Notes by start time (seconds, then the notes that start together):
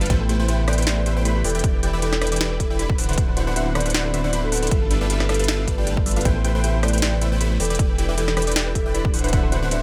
0.01 G3 D4 F4 A4 B4 F5, closed hi-hat
0.06 closed hi-hat
0.10 A1 C3 A3 B3 E4 G4 B4 C5 G5, kick, closed hi-hat
0.20 A4
0.29 A3 E4 G4 B4 C5 G5, closed hi-hat
0.40 A3 E4 B4 C5 G5
0.48 A3 E4 G4 B4 C5 E5 G5, closed hi-hat
0.59 G4
0.68 A3 E4 A4 B4 C5 D5 G5, cross-stick, closed hi-hat
0.73 closed hi-hat
0.78 A3 E4 B4 C5 G5, closed hi-hat
0.82 closed hi-hat
0.87 A3 E4 G4 B4 C5 D5 G5, snare, closed hi-hat
0.97 A4 D5
1.06 A3 E4 G4 B4 C5 E5, closed hi-hat
1.17 A3 E4 B4 C5 G5
1.25 A3 E4 G4 B4 C5 B5, closed hi-hat
1.36 G4
1.44 E1 E3 D4 E4 A4 B4 D5 G5, open hi-hat
1.50 closed hi-hat
1.55 E3 E4 B4 D5 G5, closed hi-hat
1.59 closed hi-hat
1.64 G4 D5, kick, closed hi-hat
1.74 B4
1.83 E3 E4 G4 B4 D5 G5, closed hi-hat
1.93 E3 E4 B4 D5 E5 G5
2.02 E3 E4 G4 A4 B4 D5 G5, closed hi-hat
2.12 G4 A4, cross-stick, snare
2.22 E3 E4 A4 B4 D5 G5, cross-stick, closed hi-hat
2.27 closed hi-hat
2.32 E3 E4 B4 D5 G5, closed hi-hat
2.36 closed hi-hat
2.41 E3 E4 G4 B4 D5 G5, snare, closed hi-hat
2.51 B4
2.60 E3 E4 G4 A4 B4 D5 E5, kick, closed hi-hat
2.70 E3 E4 B4 D5 E5 G5
2.79 E3 E4 G4 B4 D5 B5, closed hi-hat
2.90 G4, kick
2.98 D1 D3 B3 C4 D4 E4 F#4 A4 B4 C5 F#5, open hi-hat
3.04 closed hi-hat
3.09 D3 D4 E4 B4 C5 F#5, closed hi-hat
3.13 closed hi-hat
3.18 F#4 B4 C5, kick, closed hi-hat
3.28 A4
3.37 D3 D4 E4 F#4 B4 C5 F#5, closed hi-hat
3.47 D3 D4 E4 B4 C5 F#5
3.56 D3 D4 E4 F#4 B4 C5 E5 F#5, closed hi-hat
3.66 F#4
3.75 D3 D4 E4 A4 B4 C5 D5 F#5, cross-stick, closed hi-hat
3.80 closed hi-hat
3.85 D3 D4 E4 B4 C5 F#5, closed hi-hat
3.90 closed hi-hat
3.94 D3 D4 E4 F#4 B4 C5 D5 F#5, snare, closed hi-hat
4.05 A4 D5
4.14 D3 D4 E4 F#4 B4 C5 E5, closed hi-hat
4.24 D3 D4 E4 B4 C5 D5 F#5
4.33 D3 D4 E4 F#4 B4 C5 B5, closed hi-hat
4.43 F#4 A4
4.52 D3 D4 E4 A4 B4 C5 F#5, open hi-hat
4.57 closed hi-hat
4.62 D3 D4 E4 A4 B4 C5 F#5, closed hi-hat
4.67 closed hi-hat
4.71 G1 G3 A3 B3 D4 F4 G4 A4 B4 E5, kick, closed hi-hat
4.82 A4
4.91 G3 D4 F4 G4 A4 B4 E5, closed hi-hat
5.01 G3 D4 F4 A4 B4 D5 E5
5.10 G3 D4 F4 G4 A4 B4 E5, closed hi-hat
5.20 G4, cross-stick, snare
5.29 G3 D4 F4 A4 B4 E5, cross-stick, closed hi-hat
5.34 closed hi-hat
5.39 G3 D4 F4 A4 B4 E5, closed hi-hat
5.44 closed hi-hat
5.48 G3 D4 F4 G4 A4 B4 E5, snare
5.59 A4
5.68 G3 D4 F4 G4 A4 B4 D5, kick, closed hi-hat
5.78 G3 D4 F4 G4 A4 B4 D5 G5
5.87 G3 D4 F4 G4 A4 B4 G5, closed hi-hat
5.97 B4, kick
6.06 G3 D4 F4 A4 B4 D5 E5, open hi-hat
6.11 closed hi-hat
6.16 G3 D4 F4 A4 B4 D5 F5, closed hi-hat
6.21 closed hi-hat
6.25 A1 C3 A3 E4 G4 B4 C5 G5, kick, closed hi-hat
6.36 A4
6.44 A3 E4 G4 B4 C5 G5, closed hi-hat
6.55 A3 E4 B4 C5 G5
6.64 A3 E4 G4 B4 C5 E5 G5, closed hi-hat
6.74 G4
6.83 A3 E4 A4 B4 C5 D5 G5, cross-stick, closed hi-hat
6.88 closed hi-hat
6.93 A3 E4 B4 C5 G5, closed hi-hat
6.98 closed hi-hat
7.02 A3 E4 G4 B4 C5 D5 G5, snare, closed hi-hat
7.12 A4
7.21 A3 E4 G4 B4 C5 E5, closed hi-hat
7.32 A3 E4 B4 C5 G5
7.41 A3 E4 G4 B4 C5 B5, closed hi-hat
7.51 G4
7.60 E1 E3 D4 E4 G4 A4 B4 D5 G5, open hi-hat
7.65 closed hi-hat
7.70 E3 E4 B4 D5 G5, closed hi-hat
7.75 closed hi-hat
7.79 G4 D5, kick, closed hi-hat
7.90 B4
7.98 E3 E4 G4 B4 D5 G5, closed hi-hat
8.09 E3 E4 B4 D5 E5 G5
8.17 E3 E4 G4 A4 B4 D5 G5, closed hi-hat
8.28 G4 A4, cross-stick, snare
8.37 E3 E4 A4 B4 D5 G5, cross-stick, closed hi-hat
8.42 closed hi-hat
8.47 E3 E4 B4 D5 G5, closed hi-hat
8.52 closed hi-hat
8.56 E3 E4 G4 B4 D5 G5, snare, closed hi-hat
8.66 B4
8.75 E3 E4 G4 A4 B4 D5 E5, kick, closed hi-hat
8.86 E3 E4 B4 D5 E5 G5
8.94 E3 E4 G4 B4 D5 B5, closed hi-hat
9.05 G4, kick
9.14 D1 D3 B3 C4 D4 E4 F#4 A4 B4 C5 F#5, open hi-hat
9.19 closed hi-hat
9.24 D3 D4 E4 B4 C5 F#5, closed hi-hat
9.28 closed hi-hat
9.33 D3 D4 E4 F#4 B4 C5 F#5, kick, closed hi-hat
9.43 A4
9.52 D3 D4 E4 F#4 B4 C5 F#5, closed hi-hat
9.62 D3 D4 E4 B4 C5 F#5
9.71 D3 D4 E4 F#4 B4 C5 E5 F#5, closed hi-hat